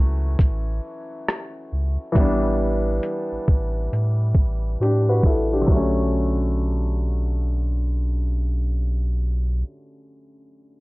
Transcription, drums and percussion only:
0, 0, Header, 1, 2, 480
1, 0, Start_track
1, 0, Key_signature, 2, "minor"
1, 0, Tempo, 882353
1, 1173, Time_signature, 4, 2, 24, 8
1, 5876, End_track
2, 0, Start_track
2, 0, Title_t, "Drums"
2, 212, Note_on_c, 9, 36, 84
2, 221, Note_on_c, 9, 42, 57
2, 267, Note_off_c, 9, 36, 0
2, 275, Note_off_c, 9, 42, 0
2, 699, Note_on_c, 9, 37, 107
2, 706, Note_on_c, 9, 42, 61
2, 753, Note_off_c, 9, 37, 0
2, 760, Note_off_c, 9, 42, 0
2, 1171, Note_on_c, 9, 36, 103
2, 1176, Note_on_c, 9, 42, 52
2, 1226, Note_off_c, 9, 36, 0
2, 1231, Note_off_c, 9, 42, 0
2, 1648, Note_on_c, 9, 42, 72
2, 1703, Note_off_c, 9, 42, 0
2, 1893, Note_on_c, 9, 36, 76
2, 1948, Note_off_c, 9, 36, 0
2, 2139, Note_on_c, 9, 42, 53
2, 2193, Note_off_c, 9, 42, 0
2, 2364, Note_on_c, 9, 36, 72
2, 2419, Note_off_c, 9, 36, 0
2, 2626, Note_on_c, 9, 42, 59
2, 2680, Note_off_c, 9, 42, 0
2, 2847, Note_on_c, 9, 36, 86
2, 2901, Note_off_c, 9, 36, 0
2, 3089, Note_on_c, 9, 36, 97
2, 3143, Note_off_c, 9, 36, 0
2, 5876, End_track
0, 0, End_of_file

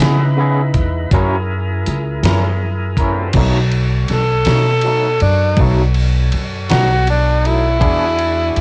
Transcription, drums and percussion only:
0, 0, Header, 1, 2, 480
1, 0, Start_track
1, 0, Tempo, 744325
1, 2158, Time_signature, 12, 3, 24, 8
1, 5550, End_track
2, 0, Start_track
2, 0, Title_t, "Drums"
2, 0, Note_on_c, 9, 42, 82
2, 13, Note_on_c, 9, 38, 102
2, 65, Note_off_c, 9, 42, 0
2, 77, Note_off_c, 9, 38, 0
2, 477, Note_on_c, 9, 42, 57
2, 479, Note_on_c, 9, 36, 71
2, 542, Note_off_c, 9, 42, 0
2, 544, Note_off_c, 9, 36, 0
2, 717, Note_on_c, 9, 42, 70
2, 718, Note_on_c, 9, 36, 68
2, 782, Note_off_c, 9, 42, 0
2, 783, Note_off_c, 9, 36, 0
2, 1202, Note_on_c, 9, 42, 57
2, 1266, Note_off_c, 9, 42, 0
2, 1441, Note_on_c, 9, 42, 67
2, 1453, Note_on_c, 9, 38, 90
2, 1505, Note_off_c, 9, 42, 0
2, 1518, Note_off_c, 9, 38, 0
2, 1915, Note_on_c, 9, 36, 63
2, 1918, Note_on_c, 9, 42, 52
2, 1979, Note_off_c, 9, 36, 0
2, 1982, Note_off_c, 9, 42, 0
2, 2149, Note_on_c, 9, 49, 92
2, 2149, Note_on_c, 9, 51, 80
2, 2154, Note_on_c, 9, 36, 100
2, 2213, Note_off_c, 9, 49, 0
2, 2213, Note_off_c, 9, 51, 0
2, 2218, Note_off_c, 9, 36, 0
2, 2396, Note_on_c, 9, 51, 50
2, 2461, Note_off_c, 9, 51, 0
2, 2634, Note_on_c, 9, 51, 53
2, 2646, Note_on_c, 9, 38, 27
2, 2698, Note_off_c, 9, 51, 0
2, 2710, Note_off_c, 9, 38, 0
2, 2870, Note_on_c, 9, 51, 80
2, 2882, Note_on_c, 9, 38, 94
2, 2934, Note_off_c, 9, 51, 0
2, 2946, Note_off_c, 9, 38, 0
2, 3106, Note_on_c, 9, 51, 57
2, 3170, Note_off_c, 9, 51, 0
2, 3356, Note_on_c, 9, 51, 55
2, 3420, Note_off_c, 9, 51, 0
2, 3590, Note_on_c, 9, 51, 77
2, 3591, Note_on_c, 9, 36, 97
2, 3655, Note_off_c, 9, 51, 0
2, 3656, Note_off_c, 9, 36, 0
2, 3833, Note_on_c, 9, 51, 68
2, 3897, Note_off_c, 9, 51, 0
2, 4075, Note_on_c, 9, 51, 54
2, 4140, Note_off_c, 9, 51, 0
2, 4318, Note_on_c, 9, 51, 74
2, 4330, Note_on_c, 9, 38, 104
2, 4382, Note_off_c, 9, 51, 0
2, 4394, Note_off_c, 9, 38, 0
2, 4561, Note_on_c, 9, 51, 57
2, 4625, Note_off_c, 9, 51, 0
2, 4805, Note_on_c, 9, 51, 49
2, 4870, Note_off_c, 9, 51, 0
2, 5036, Note_on_c, 9, 36, 102
2, 5040, Note_on_c, 9, 51, 70
2, 5100, Note_off_c, 9, 36, 0
2, 5104, Note_off_c, 9, 51, 0
2, 5278, Note_on_c, 9, 51, 50
2, 5343, Note_off_c, 9, 51, 0
2, 5521, Note_on_c, 9, 51, 53
2, 5550, Note_off_c, 9, 51, 0
2, 5550, End_track
0, 0, End_of_file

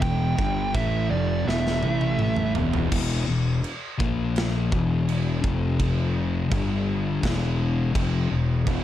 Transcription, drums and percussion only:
0, 0, Header, 1, 2, 480
1, 0, Start_track
1, 0, Key_signature, 1, "minor"
1, 0, Tempo, 720288
1, 19, Time_signature, 4, 2, 24, 8
1, 5889, End_track
2, 0, Start_track
2, 0, Title_t, "Drums"
2, 11, Note_on_c, 9, 49, 56
2, 13, Note_on_c, 9, 36, 112
2, 78, Note_off_c, 9, 49, 0
2, 80, Note_off_c, 9, 36, 0
2, 256, Note_on_c, 9, 36, 109
2, 323, Note_off_c, 9, 36, 0
2, 496, Note_on_c, 9, 36, 103
2, 497, Note_on_c, 9, 49, 54
2, 563, Note_off_c, 9, 36, 0
2, 564, Note_off_c, 9, 49, 0
2, 991, Note_on_c, 9, 38, 57
2, 1057, Note_off_c, 9, 38, 0
2, 1111, Note_on_c, 9, 38, 55
2, 1178, Note_off_c, 9, 38, 0
2, 1217, Note_on_c, 9, 48, 75
2, 1283, Note_off_c, 9, 48, 0
2, 1340, Note_on_c, 9, 48, 64
2, 1406, Note_off_c, 9, 48, 0
2, 1458, Note_on_c, 9, 47, 88
2, 1525, Note_off_c, 9, 47, 0
2, 1576, Note_on_c, 9, 45, 79
2, 1642, Note_off_c, 9, 45, 0
2, 1700, Note_on_c, 9, 43, 102
2, 1766, Note_off_c, 9, 43, 0
2, 1823, Note_on_c, 9, 43, 94
2, 1889, Note_off_c, 9, 43, 0
2, 1944, Note_on_c, 9, 49, 71
2, 1944, Note_on_c, 9, 57, 124
2, 1945, Note_on_c, 9, 36, 107
2, 2011, Note_off_c, 9, 49, 0
2, 2011, Note_off_c, 9, 57, 0
2, 2012, Note_off_c, 9, 36, 0
2, 2426, Note_on_c, 9, 49, 56
2, 2493, Note_off_c, 9, 49, 0
2, 2666, Note_on_c, 9, 36, 114
2, 2733, Note_off_c, 9, 36, 0
2, 2905, Note_on_c, 9, 49, 54
2, 2919, Note_on_c, 9, 38, 111
2, 2971, Note_off_c, 9, 49, 0
2, 2985, Note_off_c, 9, 38, 0
2, 3147, Note_on_c, 9, 36, 109
2, 3214, Note_off_c, 9, 36, 0
2, 3389, Note_on_c, 9, 49, 58
2, 3456, Note_off_c, 9, 49, 0
2, 3624, Note_on_c, 9, 36, 118
2, 3691, Note_off_c, 9, 36, 0
2, 3862, Note_on_c, 9, 49, 59
2, 3864, Note_on_c, 9, 36, 102
2, 3929, Note_off_c, 9, 49, 0
2, 3930, Note_off_c, 9, 36, 0
2, 4341, Note_on_c, 9, 49, 64
2, 4343, Note_on_c, 9, 36, 113
2, 4407, Note_off_c, 9, 49, 0
2, 4409, Note_off_c, 9, 36, 0
2, 4819, Note_on_c, 9, 49, 68
2, 4821, Note_on_c, 9, 36, 101
2, 4833, Note_on_c, 9, 38, 100
2, 4886, Note_off_c, 9, 49, 0
2, 4887, Note_off_c, 9, 36, 0
2, 4900, Note_off_c, 9, 38, 0
2, 5299, Note_on_c, 9, 36, 104
2, 5300, Note_on_c, 9, 49, 67
2, 5366, Note_off_c, 9, 36, 0
2, 5367, Note_off_c, 9, 49, 0
2, 5776, Note_on_c, 9, 49, 70
2, 5777, Note_on_c, 9, 36, 110
2, 5842, Note_off_c, 9, 49, 0
2, 5843, Note_off_c, 9, 36, 0
2, 5889, End_track
0, 0, End_of_file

